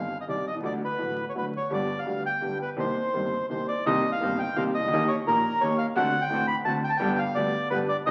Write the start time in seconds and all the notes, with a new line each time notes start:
Already playing: F5
0.21 D#5
0.27 C2 C3 D#3 G3 C4 G4 D5
0.47 B1 D#5
0.54 C2
0.59 C#2 D2 D3
0.63 D2 F#3 A3 F#4 D5
0.85 B4
0.98 A1 A2 D3 F#3 A3 F#4
1.29 C#5
1.34 D2 D3 F#3 A3 F#4 B4
1.57 C#5
1.70 G1 G2 D3 G3 B3 G4 D5
1.99 F5
2.05 D2 D3 G3 B3 G4
2.26 G5
2.41 G1 G2 D3 G3 B3 G4
2.62 B4
2.76 C2 C3 D#3 A#3 C4 G4 C5
3.14 G1 G2 D#3 A#3 C4 G4
3.49 C2 C3 D#3 A#3 C4 G4 C5
3.68 D5
3.85 C2 C3 D#3 A#3 C4 D#4 G4 D#5
4.12 F5
4.21 G1 G2 D#3 A#3 C4 D#4 G4
4.39 G5
4.56 C2 C3 D#3 A#3 C4 D#4 G4 F5
4.75 D#5
4.79 C2 C#2
4.83 C#2
4.88 D2 D#2 G3 C#4 D#4
4.93 D#2 D#3 A#3 C#4 G4
5.08 C#5
5.27 A#1 A#2 D#3 G3 A#3 C#4 D#4 G4 A#4
5.61 D#2 D#3 G3 A#3 C#4 D#4 G4 C#5
5.78 F5
5.96 D2 D3 A3 C4 D4 F#4 F#5
6.22 G5
6.29 A1 A2 D3 A3 C4 D4 F#4
6.48 B5
6.65 D2 D3 A3 C4 D4 F#4 A5
6.84 G5
6.90 A5
6.97 G1 G2 D3 G3 B3 G4 G5
7.02 G1 B3 D4 G4
7.19 F5
7.35 D2 D3 G3 B3 D4 G4 D5
7.70 G1 G2 D3 G3 B3 D4 G4 B4
7.89 D5
8.06 C2 C3 D#3 C4 D4 D#4 G4 C5 D#5